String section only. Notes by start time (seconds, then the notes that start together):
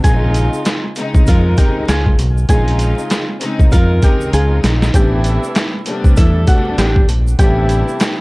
0.05 C#3 G#3 C4 D#4
0.97 C#3 G#3 C4 D#4
1.58 C#3 G#3 C4 D#4
2.49 C#3 G#3 C4 D#4
3.40 C#3 G#3 C4 D#4
4.03 C#3 G#3 C4 D#4
4.92 C3 G3 A3 B3 D4
5.86 C3 G3 A3 B3 D4
6.48 C3 G3 A3 B3 D4
7.40 C3 G3 A3 B3 D4